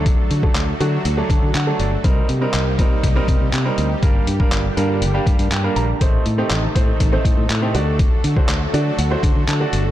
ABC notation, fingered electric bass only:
X:1
M:4/4
L:1/16
Q:1/4=121
K:Dphr
V:1 name="Fingered electric bass" clef=bass
D,,2 D,2 D,,2 D,2 D,,2 D, D, D,2 G,,,2 | C,,2 C,2 C,,2 C,2 C,,2 C, C, C,2 D,,2 | G,,,2 G,,2 G,,,2 G,,2 G,,,2 G,, G,, G,,2 B,,,2 | A,,,2 A,,2 A,,,2 A,,2 A,,,2 A,, A,, A,,2 D,,2- |
D,,2 D,2 D,,2 D,2 D,,2 D, D, D,2 G,,,2 |]